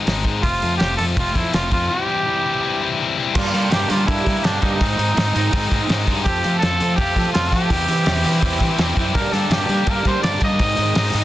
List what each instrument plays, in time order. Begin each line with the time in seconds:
0.07 fingered electric bass G#1, distorted electric guitar G#2 D#3 G#3 C4 D#4, snare, open hi-hat
0.25 distorted electric guitar G#2 D#3 G#3 C4 D#4, fingered electric bass G#2, kick, open hi-hat
0.42 fingered electric bass F1, distorted electric guitar F3 A3 C4 F4, trumpet F4, kick, open hi-hat
0.62 fingered electric bass F2, distorted electric guitar F3 A3 C4 F4, open hi-hat
0.77 fingered electric bass F1, distorted electric guitar F3 A3, trumpet G4, snare, open hi-hat
0.81 distorted electric guitar C4 F4
0.97 fingered electric bass F2, distorted electric guitar F3 A3 C4 F4, trumpet A4, open hi-hat
1.17 fingered electric bass F1, distorted electric guitar F3 A3 C4 F4, trumpet F4, kick, open hi-hat
1.35 fingered electric bass F2, distorted electric guitar F3 A3 C4 F4, trumpet E4, kick, open hi-hat
1.53 fingered electric bass F1, distorted electric guitar F3 A3 C4 F4, trumpet F4, snare, open hi-hat
1.71 fingered electric bass F2, distorted electric guitar F3 A3 C4 F4, trumpet F4, kick, open hi-hat
1.88 distorted electric guitar E3 G3 C4 E4, trumpet G4
2.08 distorted electric guitar E3 G3 C4 E4
2.26 distorted electric guitar E3 G3 C4 E4
2.44 distorted electric guitar E3 G3 C4 E4
2.62 distorted electric guitar E3 G3 C4 E4
2.81 distorted electric guitar E3 G3 C4 E4
2.99 distorted electric guitar E3 G3 C4 E4
3.16 distorted electric guitar E3 G3 C4 E4
3.35 distorted electric guitar G2 D3 G3 A#3 D4, fingered electric bass G2, trumpet F4, overdriven electric guitar G4, kick, crash
3.54 distorted electric guitar G2 D3 G3 A#3 D4, fingered electric bass G3, overdriven electric guitar G4, open hi-hat
3.71 distorted electric guitar G2 D3 G3 A#3 D4, fingered electric bass G2, trumpet G4, overdriven electric guitar G4, snare, open hi-hat
3.89 distorted electric guitar G2 D3 G3 A#3 D4, fingered electric bass G3, trumpet F4, overdriven electric guitar G4, open hi-hat
4.07 distorted electric guitar G2 D3 G3 A#3 D4, fingered electric bass G2, trumpet E4, overdriven electric guitar G4, kick, open hi-hat
4.25 distorted electric guitar G2 D3 G3 A#3 D4, fingered electric bass G3, overdriven electric guitar G4, kick, open hi-hat
4.44 distorted electric guitar G2 D3 G3 A#3 D4, fingered electric bass G2, trumpet D4, overdriven electric guitar G4, snare, open hi-hat
4.62 distorted electric guitar G2 D3 G3 A#3 D4, fingered electric bass G2, trumpet D#4, overdriven electric guitar G4, kick, open hi-hat
4.79 distorted electric guitar G#2 D#3 G#3 C4 D#4, fingered electric bass G#2, overdriven electric guitar G#4, kick, open hi-hat
4.97 distorted electric guitar G#2 D#3 G#3 C4 D#4, fingered electric bass G#2, overdriven electric guitar G#4, open hi-hat
5.16 distorted electric guitar G#2 D#3 G#3 C4 D#4, fingered electric bass G#2, overdriven electric guitar G#4, snare, open hi-hat
5.34 distorted electric guitar G#2 D#3 G#3 C4 D#4, fingered electric bass G#2, overdriven electric guitar G#4, open hi-hat
5.53 distorted electric guitar G#2 D#3 G#3 C4 D#4, fingered electric bass G#2, overdriven electric guitar G#4, kick, open hi-hat
5.71 distorted electric guitar G#2 D#3 G#3 C4 D#4, fingered electric bass G#2, overdriven electric guitar G#4, kick, open hi-hat
5.89 distorted electric guitar G#2 D#3 G#3 C4 D#4, fingered electric bass G#2, overdriven electric guitar G#4, snare, open hi-hat
6.06 fingered electric bass G2, distorted electric guitar G#2 D#3 G#3 C4 D#4, kick, open hi-hat
6.10 overdriven electric guitar G#4
6.24 fingered electric bass F2, distorted electric guitar F3 A3 C4 F4, trumpet G4, overdriven electric guitar A4, kick, open hi-hat
6.43 distorted electric guitar F3 A3 C4 F4, fingered electric bass F3, overdriven electric guitar A4, open hi-hat
6.59 distorted electric guitar F3 A3 C4 F4, trumpet A4, open hi-hat
6.63 fingered electric bass F2, overdriven electric guitar A4, snare
6.79 distorted electric guitar F3 A3 C4 F4, fingered electric bass F3, overdriven electric guitar A4, open hi-hat
6.96 fingered electric bass F2, distorted electric guitar F3 A3 C4 F4, trumpet G4, overdriven electric guitar A4, kick, open hi-hat
7.15 distorted electric guitar F3 A3 C4 F4, fingered electric bass F3, overdriven electric guitar A4, kick, open hi-hat
7.33 fingered electric bass F2, distorted electric guitar F3 A3 C4 F4, trumpet F4, overdriven electric guitar A4, snare, open hi-hat
7.49 distorted electric guitar F3 A3 C4 F4, fingered electric bass F3, trumpet G4, overdriven electric guitar A4, kick, open hi-hat
7.69 fingered electric bass E2, distorted electric guitar E3 G3 C4 E4, overdriven electric guitar G4, kick, open hi-hat
7.87 distorted electric guitar E3 G3 C4 E4, fingered electric bass E3, overdriven electric guitar G4, open hi-hat
8.05 fingered electric bass E2, distorted electric guitar E3 G3 C4 E4, overdriven electric guitar G4, snare, open hi-hat
8.24 distorted electric guitar E3 G3 C4 E4, fingered electric bass E3, overdriven electric guitar G4, open hi-hat
8.41 fingered electric bass E2, distorted electric guitar E3 G3 C4 E4, overdriven electric guitar G4, kick, open hi-hat
8.60 distorted electric guitar E3 G3 C4 E4, fingered electric bass E3, overdriven electric guitar G4, kick, open hi-hat
8.78 fingered electric bass E2, distorted electric guitar E3 G3 C4 E4, overdriven electric guitar G4, snare, open hi-hat
8.96 fingered electric bass F#2, distorted electric guitar E3 G3 C4 E4, overdriven electric guitar G4, kick, open hi-hat
9.13 distorted electric guitar G2 D3 G3 A#3 D4, fingered electric bass G2, string machine G4 A#4 D5 A#5, overdriven electric guitar G4, trumpet A#4, kick, open hi-hat
9.32 distorted electric guitar G2 D3 G3 A#3 D4, fingered electric bass G3, overdriven electric guitar G4, trumpet A4, open hi-hat
9.50 fingered electric bass G2, distorted electric guitar G2 D3 G3 A#3 D4, trumpet G4, overdriven electric guitar G4, snare, open hi-hat
9.69 distorted electric guitar G2 D3 G3 A#3 D4, fingered electric bass G3, overdriven electric guitar G4, open hi-hat
9.86 distorted electric guitar G2 D3 G3 A#3 D4, fingered electric bass G2, overdriven electric guitar G4, trumpet A#4, kick, open hi-hat
10.05 distorted electric guitar G2 D3 G3 A#3 D4, fingered electric bass G3, overdriven electric guitar G4, trumpet C5, kick, open hi-hat
10.23 distorted electric guitar G2 D3 G3 A#3 D4, fingered electric bass G2, overdriven electric guitar G4, trumpet D5, snare, open hi-hat
10.41 distorted electric guitar G2 D3 G3 A#3 D4, fingered electric bass G3, overdriven electric guitar G4, trumpet D#5, kick, open hi-hat
10.58 distorted electric guitar G#2 D#3 G#3 C4 D#4, fingered electric bass G#2, string machine G#4 C5 D#5 C6, overdriven electric guitar G#4, kick, open hi-hat
10.76 distorted electric guitar G#2 D#3 G#3 C4 D#4, fingered electric bass G#2, overdriven electric guitar G#4, open hi-hat
10.94 distorted electric guitar G#2 D#3 G#3 C4 D#4, fingered electric bass G#2, overdriven electric guitar G#4, snare, open hi-hat
11.13 distorted electric guitar G#2 D#3 G#3 C4 D#4, fingered electric bass G#2, overdriven electric guitar G#4, open hi-hat